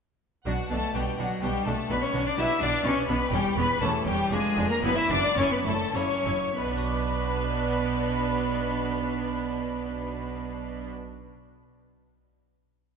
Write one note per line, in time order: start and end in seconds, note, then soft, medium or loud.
0.46 0.54 B1 medium
0.46 0.54 B2 medium
0.46 0.68 B2 medium
0.46 0.54 F#3 medium
0.46 0.54 D4 medium
0.46 0.69 F#4 medium
0.46 0.69 F#5 loud
0.70 0.78 B1 medium
0.70 0.78 B2 medium
0.70 0.92 B2 medium
0.70 0.97 A3 medium
0.70 0.79 D4 medium
0.70 0.94 A4 medium
0.70 0.94 A5 loud
0.94 1.02 B1 medium
0.94 1.02 B2 medium
0.94 1.16 B2 medium
0.94 1.18 G3 medium
0.94 1.29 B3 soft
0.94 1.02 D4 medium
0.94 1.29 D4 soft
0.94 1.29 F#4 medium
0.94 1.18 G4 medium
0.94 1.19 G5 medium
1.18 1.26 B1 medium
1.18 1.26 B2 medium
1.18 1.40 B2 medium
1.18 1.44 F#3 medium
1.18 1.27 D4 medium
1.18 1.27 F#4 medium
1.18 1.42 F#5 medium
1.42 1.51 B1 medium
1.42 1.50 B2 medium
1.42 1.64 B2 medium
1.42 1.68 G3 medium
1.42 1.77 B3 medium
1.42 1.50 D4 medium
1.42 1.77 D4 medium
1.42 1.77 F#4 medium
1.42 1.65 G4 medium
1.42 1.66 G5 medium
1.65 1.74 B1 medium
1.65 1.73 B2 medium
1.65 1.88 B2 medium
1.65 1.92 A3 medium
1.65 1.74 D4 medium
1.65 1.74 A4 medium
1.65 1.90 A5 loud
1.89 1.98 B1 medium
1.89 1.97 B2 medium
1.89 2.11 B2 medium
1.89 2.04 B3 loud
1.89 1.98 D4 medium
1.89 2.01 B4 loud
1.89 2.02 B5 loud
2.02 2.28 C#4 medium
2.02 2.26 C#5 medium
2.02 2.26 C#6 loud
2.13 2.21 B1 medium
2.13 2.21 B2 medium
2.13 2.35 B2 medium
2.13 2.22 D4 medium
2.26 2.37 D4 loud
2.26 2.38 D5 medium
2.26 2.38 D6 loud
2.37 2.45 B1 medium
2.37 2.45 B2 medium
2.37 2.59 B2 medium
2.37 2.72 B3 medium
2.37 2.45 D4 medium
2.37 2.72 D4 medium
2.37 2.61 E4 medium
2.37 2.72 G4 medium
2.37 2.61 E5 loud
2.37 2.62 E6 loud
2.61 2.69 B1 medium
2.61 2.69 B2 medium
2.61 2.83 B2 medium
2.61 2.69 D4 medium
2.61 2.85 D4 loud
2.61 2.85 D5 loud
2.61 2.85 D6 loud
2.84 2.92 B1 medium
2.84 2.92 B2 medium
2.84 3.06 B2 medium
2.84 3.19 B3 medium
2.84 3.08 C#4 loud
2.84 2.93 D4 medium
2.84 3.19 D4 medium
2.84 3.20 G4 medium
2.84 3.08 C#5 loud
2.84 2.93 C#6 loud
3.08 3.16 B1 medium
3.08 3.30 B2 medium
3.08 3.16 B2 medium
3.08 3.18 B3 loud
3.08 3.17 D4 medium
3.08 3.32 B4 medium
3.08 3.32 B5 loud
3.32 3.40 E1 medium
3.32 3.40 E2 medium
3.32 3.54 E2 medium
3.32 3.57 G3 loud
3.32 3.41 C#4 medium
3.32 3.57 G4 loud
3.32 3.57 G5 loud
3.56 3.65 E1 loud
3.56 3.65 E2 medium
3.56 3.79 E2 medium
3.56 3.66 B3 loud
3.56 3.65 C#4 medium
3.56 3.81 B4 loud
3.56 3.81 B5 loud
3.81 3.89 E1 medium
3.81 3.89 E2 medium
3.81 4.04 E2 medium
3.81 4.08 A3 medium
3.81 3.89 C#4 medium
3.81 4.17 C#4 medium
3.81 4.18 G4 medium
3.81 4.06 A4 medium
3.81 4.06 A5 loud
4.06 4.14 E1 medium
4.06 4.29 E2 medium
4.06 4.14 E2 medium
4.06 4.34 G3 loud
4.06 4.14 C#4 medium
4.06 4.31 G4 loud
4.06 4.31 G5 loud
4.30 4.39 F1 medium
4.30 4.39 F2 loud
4.30 4.54 F2 medium
4.30 4.72 G#3 loud
4.30 4.79 B3 medium
4.30 4.39 D4 medium
4.30 4.80 D4 medium
4.30 4.80 F4 medium
4.30 4.70 G#4 medium
4.30 4.69 G#5 loud
4.57 4.65 F1 medium
4.57 4.80 F2 medium
4.57 4.65 F2 medium
4.57 4.65 D4 medium
4.70 4.83 A#3 medium
4.70 4.83 A#4 loud
4.70 4.83 A#5 loud
4.83 4.91 F#1 loud
4.83 5.07 F#2 medium
4.83 4.91 F#2 medium
4.83 4.96 B3 loud
4.83 4.91 E4 medium
4.83 4.96 B4 loud
4.83 4.96 B5 loud
4.96 5.12 E4 medium
4.96 5.10 E5 loud
4.96 5.10 E6 loud
5.09 5.17 F#1 medium
5.09 5.35 F#2 medium
5.09 5.18 F#2 medium
5.09 5.37 D4 loud
5.09 5.18 E4 medium
5.09 5.37 D5 loud
5.09 5.37 D6 loud
5.37 5.45 F#1 medium
5.37 5.45 F#2 loud
5.37 5.63 F#2 medium
5.37 5.52 C#4 medium
5.37 5.79 C#4 medium
5.37 5.46 E4 medium
5.37 5.79 E4 medium
5.37 5.51 C#5 loud
5.37 5.51 C#6 loud
5.51 5.65 B3 medium
5.51 5.57 B4 medium
5.51 5.66 B5 loud
5.65 5.73 F#1 medium
5.65 5.74 F#2 medium
5.65 5.92 F#2 medium
5.65 5.94 A3 medium
5.65 5.74 E4 medium
5.65 5.94 A4 loud
5.65 5.95 A5 loud
5.94 6.03 F#1 medium
5.94 6.22 F#2 medium
5.94 6.03 F#2 medium
5.94 6.52 A#3 medium
5.94 6.55 C#4 medium
5.94 6.53 C#4 medium
5.94 6.03 E4 medium
5.94 6.53 E4 medium
5.94 6.56 C#5 medium
5.94 6.55 C#6 loud
6.25 6.33 F#1 medium
6.25 6.33 F#2 medium
6.25 6.53 F#2 medium
6.25 6.33 E4 medium
6.56 10.88 B1 medium
6.56 10.88 B2 medium
6.56 10.89 B2 medium
6.56 10.88 B3 medium
6.56 10.88 D4 medium
6.56 10.89 B4 medium
6.56 10.88 B5 loud
6.64 10.96 B3 medium
6.71 11.03 D4 medium
6.78 11.10 F#4 medium
6.85 11.17 D5 medium